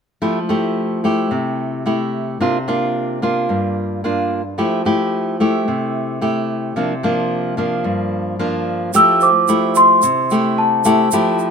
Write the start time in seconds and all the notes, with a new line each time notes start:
0.22 F3 A3 E4 G4
0.49 A3 E4 G4
1.04 A3 E4 G4
1.31 C3
1.86 A3 E4 G4
2.40 C3 A#3 D4 F4
2.68 A#3 D4 F4
3.22 A#3 D4 F4
3.49 G2
4.04 A#3 D4 F4
4.58 F3 A3 E4 G4
4.85 A3 E4 G4
5.40 A3 E4 G4
5.68 C3
6.21 A3 E4 G4
6.76 C3 F3 A#3 D4
7.03 F3 A#3 D4
7.57 F3 A#3 D4
7.84 G2
8.39 F3 A#3 D4
8.94 F3 A3 E4 G4 E6, shaker
9.21 C5 D6, shaker
9.48 A3 E4 G4, shaker
9.75 C6, shaker
10.02 C3, shaker
10.30 A3 E4 G4, shaker
10.58 A5
10.84 A3 E4 G4 A5, shaker
11.11 F3 A3 E4 G4, shaker
11.39 shaker